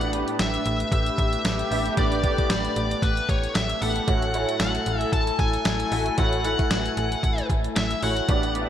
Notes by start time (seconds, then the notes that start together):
Already playing: A1 A2 A3 B3 D4 G4 B4 D5
0.01 closed hi-hat
0.13 B3 D4 G4 B4, closed hi-hat
0.28 closed hi-hat
0.39 A1 E5, snare, closed hi-hat, tambourine
0.54 closed hi-hat
0.66 A1, closed hi-hat
0.80 closed hi-hat
0.92 A1 D3 B3 G4 E5, kick, closed hi-hat
1.06 closed hi-hat
1.18 A1, kick, closed hi-hat
1.33 closed hi-hat
1.45 A1, snare, closed hi-hat, tambourine
1.59 closed hi-hat
1.71 A1 B3 D4 G4 E5, open hi-hat
1.86 closed hi-hat
1.97 A1 A2 B3 D4 G4 D5, kick, closed hi-hat
2.12 closed hi-hat
2.23 A3 D4 G4 D5, kick, closed hi-hat
2.30 B3
2.38 kick, closed hi-hat
2.50 A1, snare, closed hi-hat, tambourine
2.65 closed hi-hat
2.76 A1, closed hi-hat
2.91 closed hi-hat
3.02 A1 B4, kick, closed hi-hat
3.17 closed hi-hat
3.29 A1 C#5, kick, closed hi-hat
3.44 closed hi-hat
3.55 A1 E5, snare, closed hi-hat, tambourine
3.69 closed hi-hat
3.81 A1 B3 D4 G4 A4 F#5, open hi-hat
3.96 closed hi-hat
4.07 A1 A2 F#3 A3 E4 F#4 A4 C#5 G#5, kick, closed hi-hat
4.22 closed hi-hat
4.34 A3 E4 F#4 C#5, closed hi-hat
4.49 closed hi-hat
4.60 A1 F#5, snare, closed hi-hat, tambourine
4.75 closed hi-hat
4.86 A1, closed hi-hat
5.01 closed hi-hat
5.13 A1 A5, kick, closed hi-hat
5.27 closed hi-hat
5.39 A1 G#5, kick, closed hi-hat
5.53 closed hi-hat
5.65 A1, snare, closed hi-hat, tambourine
5.80 closed hi-hat
5.91 A1 A3 E4 F#4 A4, open hi-hat
6.06 closed hi-hat
6.17 A1 A2 A3 E4 F#4 C#5 F#5, kick, closed hi-hat
6.33 closed hi-hat
6.44 A3 E4 F#4 B4 F#5, closed hi-hat
6.59 kick, closed hi-hat
6.71 A1, snare, closed hi-hat, tambourine
6.86 closed hi-hat
6.97 A1, closed hi-hat
7.12 closed hi-hat
7.23 A1, kick, closed hi-hat
7.38 closed hi-hat
7.50 A1, kick, closed hi-hat
7.64 closed hi-hat
7.76 A1 E5, snare, closed hi-hat, tambourine
7.91 closed hi-hat
8.02 A1 A3 E4 F#4 C#5 F#5, open hi-hat
8.16 closed hi-hat
8.28 A1 A2 G3 A3 B3 D4 G4 B4 D5, kick, closed hi-hat
8.43 closed hi-hat
8.54 B3 D4 G4 D5, closed hi-hat
8.61 E5